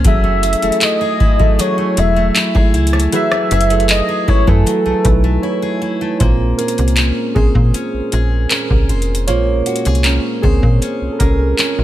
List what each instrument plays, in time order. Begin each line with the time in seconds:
Already playing: steel-string acoustic guitar A#3 C#4 C5
0.05 fm bass F#1, steel-string acoustic guitar F#3 G#4, synth keys F#3 E4 G#4 A4, soft synth lead E5, kick, closed hi-hat
0.24 steel-string acoustic guitar A3
0.43 steel-string acoustic guitar G#4, closed hi-hat
0.53 closed hi-hat
0.62 fm bass E1, synth keys F#3 E4 G#4 A4, steel-string acoustic guitar A3, closed hi-hat
0.72 closed hi-hat
0.81 steel-string acoustic guitar E4, soft synth lead D#5, clap, closed hi-hat
1.01 steel-string acoustic guitar G#4
1.20 steel-string acoustic guitar E4, kick
1.39 synth keys F#3 E4 G#4 A4, steel-string acoustic guitar A3, kick
1.59 steel-string acoustic guitar F#3 G#4, soft synth lead C#5, closed hi-hat
1.78 steel-string acoustic guitar A3
1.97 fm bass E1, steel-string acoustic guitar G#4, soft synth lead E5, closed hi-hat
2.16 steel-string acoustic guitar A3
2.35 steel-string acoustic guitar E4, clap, closed hi-hat
2.55 fm bass G#1, steel-string acoustic guitar G#4, kick
2.74 fm bass C#2, steel-string acoustic guitar E4, closed hi-hat
2.87 closed hi-hat
2.93 steel-string acoustic guitar A3, cross-stick
3.00 closed hi-hat
3.12 synth keys F#3 E4 G#4 B4, steel-string acoustic guitar F#3 G#4, soft synth lead E5, closed hi-hat
3.32 steel-string acoustic guitar A3, cross-stick
3.51 fm bass F#1, steel-string acoustic guitar G#4, closed hi-hat
3.61 closed hi-hat
3.70 synth keys F#3 E4 G#4 A4, steel-string acoustic guitar A3, closed hi-hat
3.80 closed hi-hat
3.89 steel-string acoustic guitar E4, soft synth lead D#5, clap, closed hi-hat
4.09 steel-string acoustic guitar G#4
4.28 fm bass G#1, steel-string acoustic guitar E4, soft synth lead C#5, kick
4.47 fm bass F#2, synth keys F#3 E4 B4 G#5, steel-string acoustic guitar A3, soft synth lead A4, kick
4.66 steel-string acoustic guitar F#3, closed hi-hat
4.86 fm bass B1, steel-string acoustic guitar A3
5.04 fm bass B1, synth keys D#4 B4, kick, closed hi-hat
5.24 steel-string acoustic guitar A3
5.42 steel-string acoustic guitar E4, synth keys E4 C#5
5.62 steel-string acoustic guitar G#4
5.82 steel-string acoustic guitar E4
6.01 steel-string acoustic guitar A3
6.19 fm bass A#1, synth keys A#2 G#3 C4 F4 C5, steel-string acoustic guitar A#3, kick, closed hi-hat
6.58 synth keys C#4 A#4, steel-string acoustic guitar G#4, closed hi-hat
6.68 closed hi-hat
6.78 fm bass C2, closed hi-hat
6.88 closed hi-hat
6.97 steel-string acoustic guitar C#4, clap, closed hi-hat
7.35 fm bass A#1, synth keys C4 G#4, steel-string acoustic guitar C5, kick
7.55 fm bass A#2, kick
7.74 steel-string acoustic guitar C#4, closed hi-hat
7.94 fm bass A#1
8.12 fm bass A#1, steel-string acoustic guitar G#4, closed hi-hat
8.50 steel-string acoustic guitar C#4, synth keys C#4 A#4, clap, closed hi-hat
8.70 fm bass C2, kick
8.89 fm bass F1, steel-string acoustic guitar C5, closed hi-hat
9.02 closed hi-hat
9.15 closed hi-hat
9.27 fm bass A#1, synth keys A#2 G#3 F4 C5 C#5, steel-string acoustic guitar A#3, closed hi-hat
9.66 steel-string acoustic guitar F#4, closed hi-hat
9.76 closed hi-hat
9.85 fm bass C2, steel-string acoustic guitar G#4, closed hi-hat
9.95 closed hi-hat
10.04 steel-string acoustic guitar C#4, synth keys C#4 A#4, clap, closed hi-hat
10.42 fm bass C#2, synth keys C4 G#4, steel-string acoustic guitar C5, kick
10.63 fm bass A#2, kick
10.82 steel-string acoustic guitar C#4, closed hi-hat
11.02 fm bass C2
11.12 synth keys A4
11.19 fm bass C2, synth keys C#4 A#4, steel-string acoustic guitar G#4, kick, closed hi-hat
11.59 steel-string acoustic guitar C#4, clap, closed hi-hat
11.79 fm bass A#1